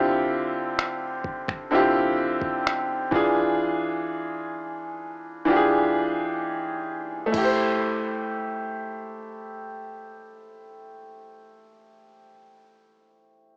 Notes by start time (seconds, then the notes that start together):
Already playing: D3 C4 E4 F4 G4 C5
0.79 finger snap
1.24 kick
1.48 finger snap, kick
1.71 D3 C4 E4 F4
1.75 G4
2.41 kick
2.67 finger snap
3.11 E3 D4 F4, kick
3.15 G#4
5.45 E3 D4 F4
5.50 G4
5.56 G#4
7.26 A3
7.32 E4, kick, crash
7.38 G4
7.44 C5